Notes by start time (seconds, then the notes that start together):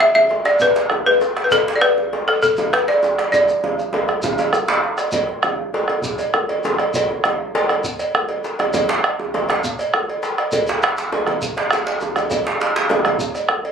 0.00 E5, bombo rim, cowbell, djembe tone
0.15 E5, djembe tone
0.29 cowbell, djembe slap, djembe bass
0.44 D5, bombo rim, cowbell, djembe slap, djembe tone
0.59 B4, bombo low, djembe slap, shekere
0.75 bombo rim, cowbell, djembe slap, shekere
0.90 bombo rim, djembe tone, djembe bass
1.06 B4, cowbell, djembe slap, djembe tone
1.21 bombo rim, djembe slap, shekere
1.37 bombo rim, djembe slap
1.44 B4
1.51 A4, bombo low, cowbell, djembe slap, djembe bass, shekere
1.68 bombo rim, djembe slap, djembe tone
1.76 D5
1.81 B4, bombo rim, cowbell, djembe tone
1.98 djembe tone
2.13 cowbell, djembe slap, djembe bass
2.28 A4, bombo rim, cowbell, djembe tone
2.42 A4, bombo low, shekere
2.57 bombo rim, cowbell, djembe tone, shekere
2.73 B4, bombo rim, djembe slap, djembe bass
2.88 D5, cowbell, djembe slap, djembe tone
3.03 bombo rim, djembe slap, djembe tone, shekere
3.18 bombo rim, cowbell, djembe slap
3.32 D5, bombo low, cowbell, djembe slap, djembe tone, djembe bass, shekere
3.48 bombo rim, djembe tone, shekere
3.64 cowbell, djembe tone
3.79 shekere
3.93 cowbell, djembe slap, djembe tone, djembe bass
4.08 bombo rim, cowbell, djembe slap, djembe tone
4.23 bombo low, djembe slap, djembe tone, shekere
4.38 bombo rim, cowbell, djembe slap, djembe tone, shekere
4.53 bombo rim, djembe bass, shekere
4.68 cowbell, djembe slap, djembe bass
4.84 djembe slap
4.98 bombo rim, cowbell, djembe slap, shekere
5.12 bombo low, cowbell, djembe slap, djembe bass, shekere
5.27 bombo rim, djembe tone
5.43 bombo rim, cowbell, djembe tone
5.74 cowbell, djembe slap, djembe bass
5.88 bombo rim, cowbell, djembe tone
6.02 bombo low, djembe tone, shekere
6.18 bombo rim, cowbell, shekere
6.34 bombo rim, djembe bass
6.49 cowbell, djembe slap, djembe tone
6.64 bombo rim, djembe slap, djembe tone, shekere
6.79 bombo rim, cowbell
6.94 bombo low, cowbell, djembe slap, djembe bass, shekere
7.09 bombo rim, djembe tone
7.24 bombo rim, cowbell, djembe tone
7.55 cowbell, djembe slap, djembe bass
7.69 bombo rim, cowbell, djembe tone
7.84 bombo low, shekere
7.99 bombo rim, cowbell, shekere
8.15 bombo rim, djembe bass
8.29 cowbell, djembe slap, djembe tone
8.44 bombo rim, djembe slap, shekere
8.59 bombo rim, cowbell, djembe tone
8.74 bombo low, cowbell, djembe slap, djembe tone, djembe bass, shekere
8.89 bombo rim, djembe slap, djembe tone
9.04 bombo rim, cowbell
9.20 djembe tone
9.34 cowbell, djembe slap, djembe tone, djembe bass
9.49 bombo rim, cowbell, djembe slap, djembe tone
9.64 bombo low, shekere
9.79 bombo rim, cowbell, shekere
9.94 bombo rim, djembe bass
10.08 cowbell, djembe slap, djembe tone
10.23 bombo rim, djembe slap, shekere
10.38 bombo rim, cowbell
10.52 bombo rim, bombo low, cowbell, djembe bass, shekere
10.67 djembe slap, djembe tone, shekere
10.82 bombo rim, djembe slap, shekere
10.98 bombo rim, djembe slap, shekere
11.12 bombo rim, cowbell, djembe slap, djembe tone, djembe bass
11.27 bombo rim, cowbell, djembe slap, djembe tone
11.42 bombo low, shekere
11.57 bombo rim, cowbell, djembe slap
11.71 bombo rim, djembe slap, djembe bass, shekere
11.86 cowbell, djembe slap, djembe bass
12.01 djembe slap, djembe tone, shekere
12.16 bombo rim, cowbell, djembe slap, djembe tone, shekere
12.30 bombo low, cowbell, djembe slap, djembe bass, shekere
12.45 bombo rim, djembe slap, djembe tone
12.60 cowbell, djembe slap
12.76 djembe slap
12.89 cowbell, djembe slap, djembe tone, djembe bass
13.05 bombo rim, cowbell, djembe tone
13.19 bombo low, shekere
13.35 bombo rim, cowbell, shekere
13.49 bombo rim, djembe bass
13.64 cowbell, djembe slap, djembe tone